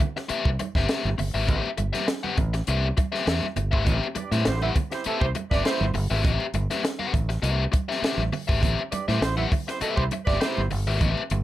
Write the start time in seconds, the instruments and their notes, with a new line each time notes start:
0.00 muted overdriven electric guitar stroke, kick, closed hi-hat, low conga
0.16 muted overdriven electric guitar stroke, snare
0.29 overdriven electric guitar C4 G4 B4 E5, muted fingered electric bass stroke, closed hi-hat
0.45 fingered electric bass C2, kick
0.59 muted overdriven electric guitar stroke, closed hi-hat, high conga
0.75 fingered electric bass G1, overdriven electric guitar C4 G4 B4 E5, kick, snare
0.89 overdriven electric guitar C4 G4 B4 E5, snare, closed hi-hat, muted conga
1.05 fingered electric bass G1, muted conga, high conga
1.18 fingered electric bass G1, muted overdriven electric guitar stroke, open hi-hat, low conga
1.34 fingered electric bass G#1, overdriven electric guitar C4 G4 B4 E5
1.47 fingered electric bass A1, overdriven electric guitar C4 G4 B4 E5, kick, closed hi-hat, muted conga, low conga
1.66 muted conga
1.77 fingered electric bass G1, muted overdriven electric guitar stroke, closed hi-hat, high conga
1.93 overdriven electric guitar C4 G4 B4 E5, snare, closed hi-hat, high conga
2.08 muted overdriven electric guitar stroke, snare, closed hi-hat, muted conga
2.23 overdriven electric guitar C4 G4 B4 F#5, muted conga, high conga
2.37 fingered electric bass A1, muted overdriven electric guitar stroke, kick, closed hi-hat, low conga
2.53 muted overdriven electric guitar stroke, snare, closed hi-hat
2.67 fingered electric bass C2, overdriven electric guitar C4 G4 B4 E5, closed hi-hat, muted conga
2.97 muted overdriven electric guitar stroke, kick, closed hi-hat, high conga
3.12 overdriven electric guitar C4 G4 B4 E5, snare
3.26 fingered electric bass E2, overdriven electric guitar C4 G4 B4 E5, snare, closed hi-hat
3.43 high conga
3.56 fingered electric bass G1, muted overdriven electric guitar stroke, closed hi-hat, low conga
3.71 fingered electric bass G#1, overdriven electric guitar C4 G4 B4 E5, kick
3.85 fingered electric bass A1, overdriven electric guitar C4 G4 B4 E5, kick, closed hi-hat, muted conga, low conga
4.04 muted conga
4.15 horn section D4 G4 B4 D5, muted overdriven electric guitar stroke, muted fingered electric bass stroke, closed hi-hat, high conga
4.31 fingered electric bass A2, horn section C4 E4 G4 C5, overdriven electric guitar C4 G4 B4 E5, snare, closed hi-hat, high conga
4.45 fingered electric bass A1, horn section C4 E4 G4 C5, muted overdriven electric guitar stroke, snare, closed hi-hat, muted conga
4.61 overdriven electric guitar C4 G4 B4 F#5, horn section E4 C5 E5, muted conga, high conga
4.76 muted overdriven electric guitar stroke, kick, closed hi-hat, low conga
4.91 horn section C4 E4 G4 C5, muted overdriven electric guitar stroke, snare, closed hi-hat
5.04 horn section A3 C4 E4 A4, overdriven electric guitar C4 G4 B4 E5, muted fingered electric bass stroke, closed hi-hat
5.21 fingered electric bass C2, horn section C4 E4 G4 C5, kick
5.35 muted overdriven electric guitar stroke, closed hi-hat, high conga
5.51 fingered electric bass G1, overdriven electric guitar C4 G4 B4 E5, horn section D4 G4 B4 D5, kick, snare
5.64 overdriven electric guitar C4 G4 B4 E5, horn section C4 E4 G4 C5, snare, closed hi-hat, muted conga
5.81 fingered electric bass G1, muted conga, high conga
5.94 fingered electric bass G1, muted overdriven electric guitar stroke, open hi-hat, low conga
6.10 fingered electric bass G#1, overdriven electric guitar C4 G4 B4 E5
6.24 fingered electric bass A1, overdriven electric guitar C4 G4 B4 E5, kick, closed hi-hat, muted conga, low conga
6.40 muted conga
6.54 fingered electric bass G1, muted overdriven electric guitar stroke, closed hi-hat, high conga
6.70 overdriven electric guitar C4 G4 B4 E5, snare, closed hi-hat, high conga
6.83 muted overdriven electric guitar stroke, snare, closed hi-hat, muted conga
6.99 overdriven electric guitar C4 G4 B4 F#5, muted conga, high conga
7.13 fingered electric bass A1, muted overdriven electric guitar stroke, kick, closed hi-hat, low conga
7.29 muted overdriven electric guitar stroke, snare, closed hi-hat
7.42 fingered electric bass C2, overdriven electric guitar C4 G4 B4 E5, closed hi-hat, muted conga
7.72 muted overdriven electric guitar stroke, kick, closed hi-hat, high conga
7.89 overdriven electric guitar C4 G4 B4 E5, snare
8.02 overdriven electric guitar C4 G4 B4 E5, muted fingered electric bass stroke, snare, closed hi-hat, muted conga
8.18 fingered electric bass A1, high conga
8.32 muted overdriven electric guitar stroke, open hi-hat, low conga
8.48 fingered electric bass G#1, overdriven electric guitar C4 G4 B4 E5, kick
8.61 fingered electric bass A1, overdriven electric guitar C4 G4 B4 E5, kick, closed hi-hat, muted conga, low conga
8.79 muted conga
8.91 horn section D4 G4 B4 D5, muted overdriven electric guitar stroke, muted fingered electric bass stroke, closed hi-hat, high conga
9.07 fingered electric bass A2, horn section C4 E4 G4 C5, overdriven electric guitar C4 G4 B4 E5, snare, high conga
9.20 fingered electric bass A1, horn section C4 E4 G4 C5, muted overdriven electric guitar stroke, snare, closed hi-hat
9.36 overdriven electric guitar C4 G4 B4 F#5, horn section E4 C5 E5, muted conga, high conga
9.52 muted overdriven electric guitar stroke, kick, open hi-hat, low conga
9.67 horn section C4 E4 G4 C5, muted overdriven electric guitar stroke, snare, closed hi-hat
9.80 horn section A3 C4 E4 A4, overdriven electric guitar C4 G4 B4 E5, muted fingered electric bass stroke, closed hi-hat, muted conga
9.96 fingered electric bass C2, horn section C4 E4 G4 C5, kick, muted conga
10.11 muted overdriven electric guitar stroke, closed hi-hat, high conga
10.25 fingered electric bass G1, overdriven electric guitar C4 G4 B4 E5, horn section D4 G4 B4 D5, kick, snare
10.40 horn section C4 E4 G4 C5, overdriven electric guitar C4 G4 B4 E5, snare, closed hi-hat, muted conga
10.57 fingered electric bass G1, muted conga, high conga
10.70 fingered electric bass G1, muted overdriven electric guitar stroke, open hi-hat, low conga
10.87 fingered electric bass G#1, overdriven electric guitar C4 G4 B4 E5
11.01 fingered electric bass A1, overdriven electric guitar C4 G4 B4 E5, kick, closed hi-hat, low conga
11.17 muted conga
11.30 fingered electric bass G1, muted overdriven electric guitar stroke, closed hi-hat, high conga